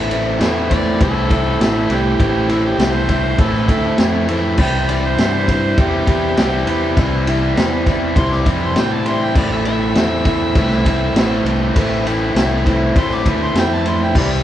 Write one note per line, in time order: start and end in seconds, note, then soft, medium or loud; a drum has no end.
0.00 0.38 A1 medium
0.00 0.11 A2 medium
0.00 0.11 E3 loud
0.00 0.12 A3 medium
0.00 0.13 C4 medium
0.00 0.14 E4 loud
0.11 0.39 A2 medium
0.11 0.40 E3 medium
0.11 0.40 A3 medium
0.11 0.41 C4 loud
0.11 0.42 E4 loud
0.11 ride medium
0.39 0.97 E2 medium
0.39 0.70 A2 loud
0.39 0.71 E3 loud
0.39 0.71 A3 loud
0.39 0.72 C4 loud
0.39 0.73 E4 loud
0.39 snare loud
0.39 ride loud
0.70 1.00 A2 medium
0.70 1.01 E3 medium
0.70 1.00 A3 loud
0.70 1.02 C4 medium
0.70 1.03 E4 medium
0.70 1.00 D5 loud
0.70 kick medium
0.70 ride medium
1.00 1.57 C2 medium
1.00 1.29 A2 medium
1.00 1.30 E3 medium
1.00 1.30 A3 medium
1.00 1.31 C4 medium
1.00 1.32 E4 medium
1.00 1.89 A4 loud
1.00 kick loud
1.00 ride loud
1.30 1.58 A2 loud
1.30 1.60 E3 loud
1.30 1.60 A3 loud
1.30 1.61 C4 loud
1.30 1.61 E4 loud
1.30 kick medium
1.30 ride medium
1.59 1.89 A1 medium
1.59 1.89 A2 medium
1.59 1.91 E3 medium
1.59 1.90 A3 medium
1.59 1.92 C4 medium
1.59 1.93 E4 loud
1.59 snare loud
1.59 ride loud
1.89 2.18 C2 medium
1.89 2.19 A2 medium
1.89 2.21 E3 medium
1.89 2.20 A3 loud
1.89 2.21 C4 medium
1.89 2.00 D4 medium
1.89 2.00 E4 medium
1.89 2.22 E4 loud
1.89 2.53 G4 loud
1.89 ride medium
2.19 2.76 A1 loud
2.19 2.47 A2 medium
2.19 2.49 E3 loud
2.19 2.49 A3 loud
2.19 2.50 C4 loud
2.19 2.50 E4 loud
2.19 kick loud
2.19 ride loud
2.48 2.76 A2 medium
2.48 2.78 E3 medium
2.48 2.78 A3 medium
2.48 2.79 C4 loud
2.48 2.80 E4 loud
2.48 2.64 E4 loud
2.48 ride medium
2.66 2.96 G4 medium
2.78 3.35 C2 loud
2.78 3.07 A2 loud
2.78 3.08 E3 loud
2.78 3.08 A3 loud
2.78 3.09 C4 loud
2.78 3.10 E4 loud
2.78 snare loud
2.78 ride loud
2.94 3.41 C5 loud
3.08 3.37 A2 medium
3.08 3.38 E3 medium
3.08 3.39 A3 medium
3.08 3.40 C4 medium
3.08 3.40 E4 medium
3.08 kick medium
3.08 ride medium
3.38 3.67 A1 loud
3.38 3.67 A2 medium
3.38 3.68 E3 medium
3.38 3.68 A3 medium
3.38 3.69 C4 medium
3.38 3.70 E4 medium
3.38 3.97 A4 loud
3.38 kick loud
3.38 ride loud
3.54 snare soft
3.68 3.97 D2 loud
3.68 3.96 A2 loud
3.68 3.98 E3 loud
3.68 3.98 A3 loud
3.68 3.99 C4 loud
3.68 3.99 E4 loud
3.68 kick medium
3.68 ride medium
3.98 4.55 F2 medium
3.98 4.27 A2 medium
3.98 4.29 E3 medium
3.98 4.28 A3 loud
3.98 4.30 C4 loud
3.98 4.30 E4 loud
3.98 snare loud
3.98 ride loud
4.28 4.56 A2 medium
4.28 4.58 E3 loud
4.28 4.57 A3 loud
4.28 4.59 C4 loud
4.28 4.60 E4 loud
4.28 ride medium
4.57 5.15 C2 loud
4.57 4.88 C3 medium
4.57 4.89 E3 loud
4.57 4.89 G3 loud
4.57 4.90 C4 loud
4.57 4.90 E4 loud
4.57 4.91 G5 loud
4.57 kick loud
4.57 crash loud
4.88 5.17 C3 medium
4.88 5.18 E3 medium
4.88 5.19 G3 medium
4.88 5.20 C4 medium
4.88 5.20 E4 loud
4.88 5.03 D5 medium
4.88 ride medium
5.05 5.76 C5 medium
5.16 5.73 G2 loud
5.16 5.47 C3 medium
5.16 5.48 E3 loud
5.16 5.48 G3 loud
5.16 5.49 C4 loud
5.16 5.49 E4 loud
5.16 snare loud
5.16 ride loud
5.48 5.75 C3 medium
5.48 5.77 E3 medium
5.48 5.77 G3 medium
5.48 5.78 C4 loud
5.48 5.79 E4 loud
5.48 kick medium
5.48 ride medium
5.76 6.34 E2 loud
5.76 6.06 C3 medium
5.76 6.07 E3 medium
5.76 6.07 G3 medium
5.76 6.08 C4 medium
5.76 6.09 E4 medium
5.76 6.95 G4 loud
5.76 kick loud
5.76 ride loud
6.07 6.36 C3 loud
6.07 6.37 E3 loud
6.07 6.38 G3 loud
6.07 6.38 C4 loud
6.07 6.39 E4 loud
6.07 kick loud
6.07 ride medium
6.35 6.64 C2 medium
6.35 6.66 C3 medium
6.35 6.67 E3 loud
6.35 6.67 G3 medium
6.35 6.69 C4 medium
6.35 6.69 E4 medium
6.35 snare loud
6.35 ride loud
6.66 6.94 E2 medium
6.66 6.96 C3 medium
6.66 6.97 E3 loud
6.66 6.98 G3 loud
6.66 6.99 C4 medium
6.66 7.00 E4 loud
6.66 ride medium
6.97 7.53 C2 loud
6.97 7.25 C3 medium
6.97 7.27 E3 loud
6.97 7.27 G3 loud
6.97 7.28 C4 loud
6.97 7.28 E4 loud
6.97 kick loud
6.97 ride loud
7.27 7.54 C3 loud
7.27 7.56 E3 medium
7.27 7.56 G3 loud
7.27 7.57 C4 medium
7.27 7.58 E4 loud
7.27 ride medium
7.55 8.12 E2 medium
7.55 7.84 C3 medium
7.55 7.86 E3 loud
7.55 7.86 G3 loud
7.55 7.87 C4 loud
7.55 7.87 E4 loud
7.55 snare loud
7.55 ride loud
7.86 8.15 C3 medium
7.86 8.17 E3 medium
7.86 8.16 G3 medium
7.86 8.18 C4 loud
7.86 8.19 E4 medium
7.86 kick loud
7.86 snare soft
7.86 ride medium
8.16 8.44 C2 medium
8.16 8.44 C3 medium
8.16 8.46 E3 medium
8.16 8.46 G3 medium
8.16 8.47 C4 medium
8.16 8.48 E4 medium
8.16 8.36 C6 loud
8.16 kick loud
8.16 ride loud
8.32 8.47 D6 medium
8.32 snare soft
8.45 8.74 F2 medium
8.45 8.75 C3 loud
8.45 8.76 E3 medium
8.45 8.76 G3 loud
8.45 8.77 C4 loud
8.45 8.78 E4 loud
8.45 kick medium
8.45 ride medium
8.63 8.76 C6 medium
8.74 9.32 A2 medium
8.74 9.05 C3 medium
8.74 9.07 E3 medium
8.74 9.06 G3 medium
8.74 9.08 C4 loud
8.74 9.08 E4 loud
8.74 snare loud
8.74 ride loud
8.78 8.94 G5 medium
8.93 9.09 A5 medium
9.06 9.34 C3 medium
9.06 9.36 E3 medium
9.06 9.35 G3 loud
9.06 9.37 C4 loud
9.06 9.37 E4 loud
9.06 9.25 C6 medium
9.06 ride medium
9.24 9.39 G5 medium
9.35 9.92 A1 loud
9.35 9.64 A2 loud
9.35 9.65 E3 medium
9.35 9.66 A3 loud
9.35 9.66 C4 loud
9.35 9.67 E4 loud
9.35 9.51 D5 medium
9.35 kick loud
9.35 crash loud
9.52 9.65 E5 medium
9.64 9.95 A2 medium
9.64 9.95 E3 medium
9.64 9.96 A3 loud
9.64 9.97 C4 loud
9.64 9.97 E4 loud
9.64 11.41 E5 loud
9.64 ride medium
9.95 10.52 E2 medium
9.95 10.24 A2 medium
9.95 10.25 E3 loud
9.95 10.26 A3 loud
9.95 10.26 C4 loud
9.95 10.27 E4 loud
9.95 snare loud
9.95 ride loud
10.25 10.56 A2 medium
10.25 10.57 E3 medium
10.25 10.56 A3 medium
10.25 10.58 C4 medium
10.25 10.59 E4 loud
10.25 kick medium
10.25 ride medium
10.55 11.12 C2 medium
10.55 10.83 A2 medium
10.55 10.86 E3 medium
10.55 10.85 A3 medium
10.55 10.86 C4 medium
10.55 10.88 E4 medium
10.55 kick loud
10.55 ride loud
10.70 snare soft
10.85 11.15 A2 medium
10.85 11.16 E3 loud
10.85 11.16 A3 loud
10.85 11.17 C4 loud
10.85 11.18 E4 loud
10.85 kick medium
10.85 ride medium
11.14 11.43 A1 medium
11.14 11.44 A2 medium
11.14 11.45 E3 medium
11.14 11.45 A3 loud
11.14 11.47 C4 loud
11.14 snare loud
11.14 ride loud
11.18 11.47 E4 medium
11.44 11.73 C2 medium
11.44 11.74 A2 medium
11.44 11.76 E3 medium
11.44 11.75 A3 medium
11.44 11.77 C4 loud
11.44 11.77 E4 loud
11.44 ride medium
11.75 12.32 A1 loud
11.75 12.04 A2 medium
11.75 12.05 E3 loud
11.75 12.06 A3 loud
11.75 12.07 C4 loud
11.75 12.07 E4 loud
11.75 kick loud
11.75 ride loud
12.05 12.34 A2 medium
12.05 12.36 E3 loud
12.05 12.36 A3 loud
12.05 12.36 C4 loud
12.05 12.37 E4 loud
12.05 ride medium
12.34 12.92 C2 medium
12.34 12.65 A2 loud
12.34 12.67 E3 loud
12.34 12.66 A3 loud
12.34 12.68 C4 loud
12.34 12.68 E4 loud
12.34 snare loud
12.34 ride loud
12.66 12.95 A2 medium
12.66 12.97 E3 medium
12.66 12.96 A3 medium
12.66 12.98 C4 medium
12.66 12.98 E4 medium
12.66 kick medium
12.66 ride medium
12.96 13.24 A1 loud
12.96 13.25 A2 medium
12.96 13.26 E3 medium
12.96 13.26 A3 medium
12.96 13.27 C4 medium
12.96 13.28 E4 medium
12.96 13.15 C6 loud
12.96 kick loud
12.96 ride loud
13.11 13.26 D6 loud
13.11 snare soft
13.26 13.54 D2 medium
13.26 13.54 A2 loud
13.26 13.56 E3 loud
13.26 13.56 A3 loud
13.26 13.57 C4 loud
13.26 13.58 E4 loud
13.26 kick loud
13.26 ride medium
13.43 13.56 C6 loud
13.54 14.11 F2 medium
13.54 13.84 A2 medium
13.54 13.85 E3 medium
13.54 13.85 A3 medium
13.54 13.87 C4 medium
13.54 snare loud
13.54 ride loud
13.58 13.87 E4 loud
13.58 13.76 G5 loud
13.74 13.90 A5 medium
13.85 14.13 A2 loud
13.85 14.16 E3 medium
13.85 14.14 A3 loud
13.85 14.17 C4 loud
13.85 14.18 E4 medium
13.85 14.01 C6 medium
13.85 ride medium
14.04 14.19 G5 medium
14.15 14.43 C2 loud
14.15 14.43 C3 medium
14.15 14.43 E3 loud
14.15 14.43 G3 loud
14.15 14.43 C4 loud
14.15 14.43 E4 loud
14.15 14.34 D5 loud
14.15 kick loud
14.15 crash loud
14.33 14.43 E5 loud